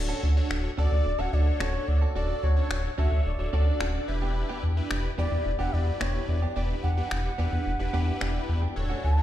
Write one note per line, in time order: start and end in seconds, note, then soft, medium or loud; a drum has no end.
0.00 0.13 D1 loud
0.00 0.28 D4 medium
0.00 0.29 F#4 medium
0.00 0.29 A4 medium
0.00 0.29 C#5 medium
0.09 0.21 C#4 medium
0.09 0.22 F#4 medium
0.09 0.23 A4 medium
0.23 0.41 D2 medium
0.23 0.37 C#4 medium
0.23 0.36 F#4 medium
0.23 0.35 A4 medium
0.36 0.70 D4 medium
0.36 0.70 F#4 medium
0.36 0.70 A4 medium
0.36 0.70 C#5 loud
0.36 muted clean electric guitar stroke soft
0.50 0.68 D1 loud
0.50 finger snap loud
0.50 muted clean electric guitar stroke soft
0.64 muted clean electric guitar stroke soft
0.77 0.87 D2 medium
0.77 0.96 C#4 medium
0.77 1.11 D4 medium
0.77 0.91 F#4 medium
0.77 1.11 F#4 medium
0.77 1.11 A4 medium
0.77 0.90 A4 medium
0.77 1.21 D5 loud
0.77 1.11 D5 medium
0.92 1.01 D2 loud
0.92 muted clean electric guitar stroke medium
1.05 1.15 D1 loud
1.05 muted clean electric guitar stroke soft
1.19 1.28 D1 medium
1.19 1.31 C#4 medium
1.19 1.30 D4 medium
1.19 1.30 F#4 medium
1.19 1.32 F#4 medium
1.19 1.32 A4 medium
1.19 1.31 A4 medium
1.19 1.31 C#5 medium
1.19 1.35 F#5 loud
1.33 1.51 D2 loud
1.33 1.99 D4 medium
1.33 1.99 F#4 medium
1.33 1.99 A4 medium
1.33 2.00 C#5 medium
1.33 1.62 D5 medium
1.33 muted clean electric guitar stroke soft
1.46 muted clean electric guitar stroke soft
1.60 1.78 D1 loud
1.60 1.79 C#4 medium
1.60 1.74 F#4 medium
1.60 1.73 A4 loud
1.60 1.90 C#5 medium
1.60 finger snap loud
1.74 muted clean electric guitar stroke soft
1.88 2.06 D2 loud
1.88 2.15 D5 medium
1.88 muted clean electric guitar stroke soft
2.02 2.14 C#4 soft
2.02 2.15 F#4 medium
2.02 2.15 A4 medium
2.15 2.34 D1 loud
2.15 2.34 C#4 medium
2.15 2.49 D4 medium
2.15 2.49 F#4 medium
2.15 2.34 F#4 medium
2.15 2.49 A4 medium
2.15 2.35 A4 loud
2.15 2.45 D5 medium
2.15 2.49 D5 medium
2.43 2.61 D2 medium
2.43 2.57 C#4 medium
2.43 2.56 F#4 medium
2.43 2.56 A4 medium
2.43 2.70 C#5 medium
2.56 2.70 C#4 soft
2.56 2.90 D4 medium
2.56 2.90 F#4 medium
2.56 2.70 F#4 medium
2.56 2.90 A4 medium
2.56 2.70 A4 medium
2.56 2.90 C#5 medium
2.70 2.89 D1 loud
2.70 2.96 C#5 medium
2.70 finger snap loud
2.70 muted clean electric guitar stroke soft
2.84 muted clean electric guitar stroke soft
2.98 3.07 D2 loud
2.98 3.16 C#4 medium
2.98 3.31 D4 medium
2.98 3.31 F#4 medium
2.98 3.12 F#4 medium
2.98 3.31 A4 medium
2.98 3.11 A4 medium
2.98 3.31 C#5 medium
2.98 3.24 E5 medium
3.12 3.21 D2 medium
3.12 muted clean electric guitar stroke soft
3.25 3.35 D1 loud
3.25 4.04 D5 medium
3.39 3.48 D1 loud
3.39 3.50 D4 medium
3.39 3.50 F#4 medium
3.39 3.50 A4 medium
3.39 3.50 C#5 medium
3.39 muted clean electric guitar stroke soft
3.53 3.71 D2 loud
3.53 3.71 C#4 medium
3.53 4.06 D4 medium
3.53 4.08 F#4 medium
3.53 3.67 F#4 medium
3.53 4.08 A4 medium
3.53 3.66 A4 medium
3.53 4.08 D5 medium
3.67 muted clean electric guitar stroke soft
3.81 3.99 D1 loud
3.81 3.99 C#4 medium
3.81 3.94 F#4 loud
3.81 3.93 A4 loud
3.81 finger snap loud
3.95 muted clean electric guitar stroke soft
4.08 4.44 E1 loud
4.08 4.63 D4 medium
4.08 4.63 E4 medium
4.08 4.64 G4 medium
4.08 4.64 B4 loud
4.08 muted clean electric guitar stroke soft
4.22 4.35 B3 medium
4.22 4.35 D4 medium
4.22 4.36 G4 medium
4.36 muted clean electric guitar stroke soft
4.49 4.62 B3 medium
4.49 4.63 D4 medium
4.49 4.63 G4 medium
4.63 4.81 E2 loud
4.63 4.78 B3 medium
4.63 4.77 D4 medium
4.63 4.76 G4 medium
4.77 5.10 D4 medium
4.77 5.10 E4 medium
4.77 5.10 G4 medium
4.77 5.10 B4 medium
4.77 muted clean electric guitar stroke soft
4.91 5.09 E1 loud
4.91 finger snap loud
4.91 muted clean electric guitar stroke soft
5.04 muted clean electric guitar stroke soft
5.18 5.27 E2 loud
5.18 5.37 B3 medium
5.18 5.52 D4 medium
5.18 5.32 D4 medium
5.18 5.52 E4 medium
5.18 5.52 G4 medium
5.18 5.31 G4 medium
5.18 5.52 B4 medium
5.18 5.57 D5 loud
5.32 5.41 E2 medium
5.32 muted clean electric guitar stroke medium
5.45 5.55 E1 loud
5.45 muted clean electric guitar stroke soft
5.59 5.68 E1 medium
5.59 5.72 B3 medium
5.59 5.71 D4 medium
5.59 5.72 D4 medium
5.59 5.71 E4 medium
5.59 5.73 G4 medium
5.59 5.71 G4 medium
5.59 5.71 B4 medium
5.59 5.75 F#5 loud
5.73 5.91 E2 loud
5.73 6.40 D4 medium
5.73 6.40 E4 medium
5.73 6.40 G4 medium
5.73 6.40 B4 medium
5.73 6.02 D5 medium
5.73 muted clean electric guitar stroke soft
5.87 muted clean electric guitar stroke soft
6.00 6.19 E1 loud
6.00 6.19 B3 medium
6.00 6.14 D4 medium
6.00 6.13 G4 medium
6.00 6.29 C#5 medium
6.00 finger snap loud
6.14 muted clean electric guitar stroke soft
6.28 6.46 E2 loud
6.28 6.55 D5 medium
6.28 muted clean electric guitar stroke soft
6.42 6.55 B3 soft
6.42 6.55 D4 medium
6.42 6.56 G4 medium
6.55 6.74 E1 loud
6.55 6.74 B3 medium
6.55 6.89 D4 medium
6.55 6.75 D4 medium
6.55 6.89 E4 medium
6.55 6.89 G4 medium
6.55 6.75 G4 loud
6.55 6.89 B4 medium
6.55 6.62 D5 medium
6.83 7.02 E2 medium
6.83 6.97 B3 medium
6.83 6.97 D4 medium
6.83 6.96 G4 medium
6.83 8.44 F#5 loud
6.97 7.10 B3 medium
6.97 7.30 D4 medium
6.97 7.10 D4 medium
6.97 7.30 E4 medium
6.97 7.11 G4 medium
6.97 7.31 G4 medium
6.97 7.31 B4 medium
7.11 7.29 E1 loud
7.11 finger snap loud
7.11 muted clean electric guitar stroke soft
7.24 muted clean electric guitar stroke soft
7.38 7.48 E2 loud
7.38 7.57 B3 medium
7.38 7.72 D4 medium
7.38 7.52 D4 medium
7.38 7.72 E4 medium
7.38 7.72 G4 medium
7.38 7.51 G4 medium
7.38 7.72 B4 medium
7.52 7.61 E2 loud
7.52 muted clean electric guitar stroke medium
7.66 7.75 E1 loud
7.79 7.89 E1 loud
7.79 7.91 D4 medium
7.79 7.91 E4 medium
7.79 7.91 G4 medium
7.79 7.91 B4 medium
7.79 muted clean electric guitar stroke soft
7.93 8.12 E2 loud
7.93 8.12 B3 medium
7.93 8.60 D4 medium
7.93 8.07 D4 medium
7.93 8.60 E4 medium
7.93 8.60 G4 medium
7.93 8.06 G4 medium
7.93 8.60 B4 loud
8.07 muted clean electric guitar stroke medium
8.21 8.39 E1 loud
8.21 8.39 B3 medium
8.21 8.34 D4 loud
8.21 8.34 G4 medium
8.21 finger snap loud
8.35 muted clean electric guitar stroke soft
8.48 8.67 E2 loud
8.48 muted clean electric guitar stroke soft
8.62 8.75 B3 medium
8.62 8.76 D4 medium
8.62 8.76 G4 medium
8.76 8.94 D1 loud
8.76 9.09 D4 medium
8.76 9.09 F#4 medium
8.76 9.09 A4 medium
8.76 9.09 C#5 medium
8.90 9.02 A3 medium
8.90 9.03 C#4 medium
8.90 9.03 F#4 medium
9.03 9.22 D2 medium
9.03 9.18 A3 medium
9.03 9.17 C#4 medium
9.03 9.16 F#4 medium
9.03 9.23 A5 loud
9.17 9.23 D4 medium
9.17 9.23 F#4 medium
9.17 9.23 A4 medium
9.17 9.23 C#5 medium
9.17 muted clean electric guitar stroke soft